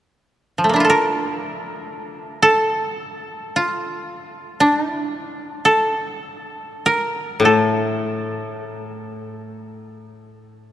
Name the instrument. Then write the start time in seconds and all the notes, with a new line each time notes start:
koto
0.58 F3
0.64 A3
0.69 A#3
0.74 D4 E4
0.80 F4
0.85 A4
0.90 A#4
2.42 A4
3.56 F4
4.60 D4
4.78 D#4
4.90 E4
5.65 A4
6.86 A#4
7.40 A2
7.45 A4